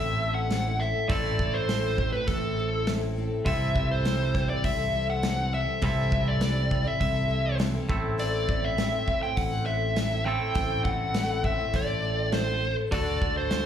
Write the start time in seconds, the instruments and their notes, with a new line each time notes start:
Already playing: fingered electric bass A1, clean electric guitar A2 A3 C4 E4 A4, lead electric guitar E5
0.06 twelve-string acoustic guitar A3 C4 E4 A4
0.21 twelve-string acoustic guitar A3 C4 E4 A4
0.34 lead electric guitar F#5
0.50 twelve-string acoustic guitar A2 E3 A3 C4 E4 A4, snare, open hi-hat
0.66 twelve-string acoustic guitar A3 C4 E4 A4
0.80 twelve-string acoustic guitar A3 C4 E4 A4, lead electric guitar E5
1.09 fingered electric bass A1, twelve-string acoustic guitar A2 E3 A3 C4 E4 A4, lead electric guitar D5, kick, open hi-hat
1.38 twelve-string acoustic guitar A3 C4 E4 A4, kick
1.54 lead electric guitar C5
1.68 twelve-string acoustic guitar A2 E3 A3 C4 E4 A4, snare, open hi-hat
1.98 twelve-string acoustic guitar A3 C4 E4 A4, kick
2.12 twelve-string acoustic guitar A3 C4 E4 A4, lead electric guitar B4
2.27 fingered electric bass A1, lead electric guitar A4, kick, open hi-hat
2.43 twelve-string acoustic guitar A3 C4 E4 A4
2.56 twelve-string acoustic guitar A3 C4 E4 A4
2.87 twelve-string acoustic guitar A2 E3 A3 C4 E4 A4, snare, open hi-hat
3.01 twelve-string acoustic guitar A3 C4 E4 A4
3.16 twelve-string acoustic guitar A3 C4 E4 A4
3.46 fingered electric bass C2, twelve-string acoustic guitar C3 E3 G3 C4 E4 A4, lead electric guitar E5, kick, open hi-hat
3.75 twelve-string acoustic guitar G3 C4 E4 A4, kick
3.91 lead electric guitar C5
4.04 twelve-string acoustic guitar C3 E3 G3 C4 E4 A4, snare, open hi-hat
4.34 twelve-string acoustic guitar G3 C4 E4 A4, kick, snare
4.48 twelve-string acoustic guitar G3 C4 E4 A4, lead electric guitar D5
4.64 fingered electric bass C2, lead electric guitar E5, kick, open hi-hat
4.77 twelve-string acoustic guitar G3 C4 E4 A4
4.93 twelve-string acoustic guitar G3 C4 E4 A4
5.10 lead electric guitar F#5
5.22 twelve-string acoustic guitar C3 E3 G3 C4 E4 A4, snare, open hi-hat
5.37 twelve-string acoustic guitar G3 C4 E4 A4
5.51 twelve-string acoustic guitar G3 C4 E4 A4, lead electric guitar E5
5.81 fingered electric bass C2, twelve-string acoustic guitar C3 E3 G3 C4 E4 A4, lead electric guitar E5, kick, open hi-hat
6.10 twelve-string acoustic guitar G3 C4 E4 A4, kick
6.28 lead electric guitar D5
6.41 twelve-string acoustic guitar C3 E3 G3 C4 E4 A4, snare, open hi-hat
6.69 twelve-string acoustic guitar G3 C4 E4 A4, kick
6.84 twelve-string acoustic guitar G3 C4 E4 A4, lead electric guitar E5
7.01 fingered electric bass C2, lead electric guitar E5, kick, open hi-hat
7.14 twelve-string acoustic guitar G3 C4 E4 A4
7.28 twelve-string acoustic guitar G3 C4 E4 A4
7.58 twelve-string acoustic guitar C3 E3 G3 C4 E4 A4, snare, open hi-hat
7.74 twelve-string acoustic guitar G3 C4 E4 A4
7.88 fingered electric bass A1, clean electric guitar A2, twelve-string acoustic guitar A3 C4 E4 A4, kick
8.18 twelve-string acoustic guitar A2 E3 A3 C4 E4 A4, lead electric guitar D5, open hi-hat
8.47 twelve-string acoustic guitar A3 C4 E4 A4, kick
8.65 lead electric guitar E5
8.77 twelve-string acoustic guitar A2 E3 A3 C4 E4 A4, snare, open hi-hat
9.07 twelve-string acoustic guitar A3 C4 E4 A4, kick
9.22 twelve-string acoustic guitar A3 C4 E4 A4, lead electric guitar G5
9.36 fingered electric bass A1, lead electric guitar F#5, kick, open hi-hat
9.51 twelve-string acoustic guitar A3 C4 E4 A4
9.65 twelve-string acoustic guitar A3 C4 E4 A4, lead electric guitar E5
9.96 twelve-string acoustic guitar A2 E3 A3 C4 E4 A4, snare, open hi-hat
10.11 twelve-string acoustic guitar A3 C4 E4 A4
10.25 clean electric guitar A2, twelve-string acoustic guitar A3 C4 E4 A4, lead electric guitar G5
10.54 fingered electric bass A1, twelve-string acoustic guitar A2 E3 A3 C4 E4 A4, kick, open hi-hat
10.84 twelve-string acoustic guitar A3 C4 E4 A4, lead electric guitar F#5, kick
11.14 twelve-string acoustic guitar A2 E3 A3 C4 E4 A4, snare, open hi-hat
11.44 twelve-string acoustic guitar A3 C4 E4 A4, lead electric guitar E5, kick
11.58 twelve-string acoustic guitar A3 C4 E4 A4
11.74 fingered electric bass A1, lead electric guitar D5, kick, open hi-hat
11.88 twelve-string acoustic guitar A3 C4 E4 A4
12.02 twelve-string acoustic guitar A3 C4 E4 A4
12.32 twelve-string acoustic guitar A2 E3 A3 C4 E4 A4, lead electric guitar C5, snare, open hi-hat
12.47 twelve-string acoustic guitar A3 C4 E4 A4
12.61 twelve-string acoustic guitar A3 C4 E4 A4
12.91 fingered electric bass D2, twelve-string acoustic guitar D3 A3 D4 F#4 A4, lead electric guitar D5, kick, open hi-hat
13.20 twelve-string acoustic guitar A3 D4 F#4 A4, kick
13.37 lead electric guitar C5
13.50 twelve-string acoustic guitar D3 A3 D4 F#4 A4, snare, open hi-hat